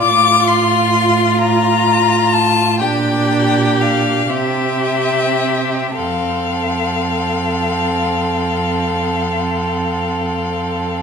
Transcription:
Already playing: viola F4
0.02 cello A2, violin F4 D6
0.47 violin C6
1.40 violin F4 A#5
2.33 violin A5
2.80 cello A#2, viola D4, violin G4 G5
3.81 violin F5
4.30 cello C3, viola C4, violin G4 E5
5.97 cello F2, viola C4, violin A4 F5

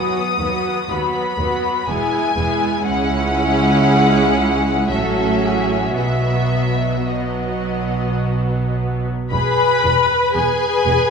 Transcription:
Already playing: viola section F#3 B3, violin section F#4 B4 D#6
0.39 cello section D#2, double bass section D#2, viola section F#3 B3, violin section F#4 B4
0.89 cello section D#2, double bass section D#2, viola section F#3 B3, violin section F#4 B4 B5
1.38 cello section D#2, double bass section D#2, viola section F#3 B3, violin section F#4 B4
1.87 double bass section E1, cello section E2, viola section G#3 B3, violin section E4 G#4 G#5
2.36 double bass section E1, cello section E2, viola section G#3 B3, violin section E4 G#4
2.85 double bass section C#2, cello section C#2, viola section G#3 C#4, violin section E4 G#4 F#5
4.90 double bass section A1, cello section A2, viola section F#3 C#4, violin section F#4 A4 E5
5.44 violin section G#4
5.95 double bass section B1, cello section B2, viola section F#3 B3, violin section F#4 E5
7.06 viola section F#3 B3, violin section F#4 D#5
9.30 double bass section E1, cello section E2, violin section G#4 B5, viola section B4
9.84 double bass section E1, cello section E2, violin section B4
10.35 double bass section E1, cello section E2, viola section G#4, violin section G#5
10.86 double bass section E1, cello section E2

